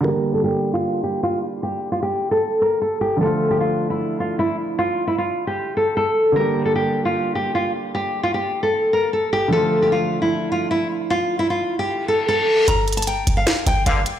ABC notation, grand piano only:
X:1
M:4/4
L:1/8
Q:1/4=152
K:Dm
V:1 name="Grand piano" clef=bass
[D,G,B,G]8- | [D,G,B,G]8 | [D,F,A,F]8- | [D,F,A,F]8 |
[D,G,B,G]8- | [D,G,B,G]8 | [D,F,A,F]8- | [D,F,A,F]8 |
z8 |]